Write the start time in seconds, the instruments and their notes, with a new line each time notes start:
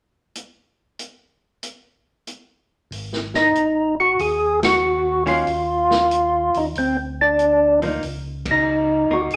0.35 closed hi-hat
0.99 closed hi-hat
1.63 closed hi-hat
2.27 closed hi-hat
2.91 tonewheel organ G#1, open hi-hat
3.13 snare
3.34 tonewheel organ D#4, snare
3.55 tonewheel organ A1, closed hi-hat
4.00 tonewheel organ F#4
4.19 tonewheel organ D#2 G#4, open hi-hat
4.63 tonewheel organ F#4, snare, ride
5.26 hollow-body jazz guitar D#3 A#3 C#4 F#4, tonewheel organ F4, open hi-hat
5.47 tonewheel organ D#2, open hi-hat
5.91 snare
6.11 closed hi-hat
6.54 tonewheel organ D#2 D#4, open hi-hat
6.75 tonewheel organ D2 C4, open hi-hat
7.21 tonewheel organ D4
7.39 closed hi-hat
7.82 hollow-body jazz guitar F3 A#3 D#4, open hi-hat
8.03 tonewheel organ C#2, open hi-hat
8.46 kick, ride
8.51 tonewheel organ D#4
9.09 tonewheel organ D2, hollow-body jazz guitar A#3 D#4
9.13 tonewheel organ F#4
9.30 tonewheel organ G#1, open hi-hat